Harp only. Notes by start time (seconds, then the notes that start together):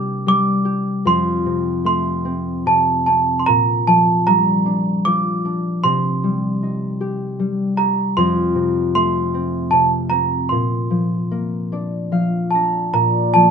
Already playing: C3 G3 A#3 D4 G4 A#4
0.27 G3
0.65 G4
1.05 F2
1.46 C3
1.85 A3
2.25 C4
2.66 C3
3.08 C4
3.48 A#2
3.87 F3
4.27 G3
4.66 D4
5.06 F3
5.45 D4
5.84 C3
6.24 G3
6.63 D#4
7.01 G4
7.39 G3
7.78 G4
8.17 F2
8.55 C3
8.95 A3
9.34 C4
9.73 C3
10.11 C4
10.52 A#2
10.90 F3
11.31 A#3
11.72 D4 D5
12.12 F3 F5
12.54 D4 A#5
12.93 A#2
13.35 F3